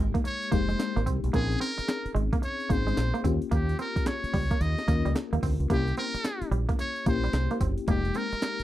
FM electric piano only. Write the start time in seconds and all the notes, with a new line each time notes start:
Already playing: G#3 A#3 D#4 G4
0.52 G#3 A#3 D#4 G4
1.34 C4 C#4 D#4 G#4
2.70 C4 C#4 D#4 G#4
3.24 A#3 C#4 F4 G4
4.88 A#3 C#4 F4 A#4
5.70 A#3 C#4 E4 G4
7.06 A#3 C#4 E4 G4
7.88 G#3 A#3 D#4 G4